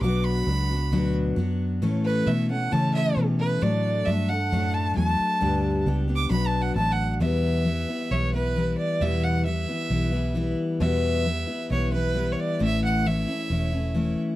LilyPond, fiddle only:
\new Staff \with { instrumentName = "Fiddle" } { \time 4/4 \key e \dorian \tempo 4 = 134 d'''8 b''2 r4. | r8 b'8 e''8 fis''8 a''8 e''8 r8 b'8 | d''4 e''8 fis''4 a''8 a''4~ | a''4 \tuplet 3/2 { r4 d'''8 b''8 a''8 fis''8 a''8 fis''8. r16 } |
e''2 cis''8 b'4 d''8 | e''8 fis''8 e''2~ e''8 r8 | e''2 cis''8 b'8.~ b'32 cis''32 d''8 | e''8 fis''8 e''2~ e''8 r8 | }